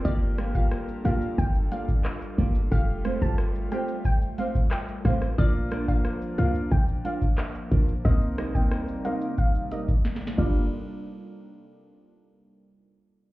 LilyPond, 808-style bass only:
\new Staff \with { instrumentName = "808-style bass" } { \clef bass \time 4/4 \key g \minor \tempo 4 = 90 g,,4~ g,,16 r16 a,,16 r16 g,,8 r4 g,,8 | f,,8. g,,8. r2 a,,8 | bes,,4~ bes,,16 r16 c,16 r16 bes,,8 r4 bes,,8 | c,8. d,8. r2 g,,8 |
r1 | }